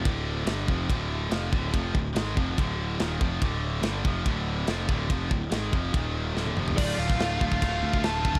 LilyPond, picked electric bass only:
\new Staff \with { instrumentName = "Picked electric bass" } { \clef bass \time 4/4 \key d \phrygian \tempo 4 = 143 d,,4 g,,8 f,,8 d,,4 f,,8 d,,8 | f,,8 d,,8 gis,,8 f,,8 d,,4 ees,,8 f,,8 | d,,4 g,,8 f,,8 d,,4 f,,8 d,,8 | f,,8 d,,8 gis,,8 f,,8 ees,,4 d,,8 f,,8 |
d,,8 d,,8 d,,8 d,,8 d,,8 d,8 d,,4 | }